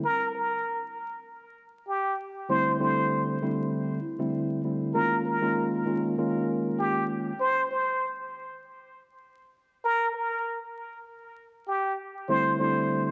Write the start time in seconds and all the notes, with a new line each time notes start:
0.05 A#4
0.35 A#4
1.88 G4
2.49 D3 G3 A3 C4 E4 C5
2.80 D3 G3 A3 C4 E4 C5
3.42 D3 G3 A3 C4 E4
4.19 D3 G3 A3 C4 E4
4.64 D3 G3 A3 C4 E4
4.94 D#3 G#3 A#3 C#4 F4 A#4
5.25 A#4
5.41 D#3 G#3 A#3 C#4 F4
5.85 D#3 G#3 A#3 C#4 F4
6.18 D#3 G#3 A#3 C#4 F4
6.79 G4
7.40 C5
7.71 C5
9.84 A#4
10.14 A#4
11.67 G4
12.28 D3 G3 A3 C4 E4 C5
12.59 D3 G3 A3 C4 E4 C5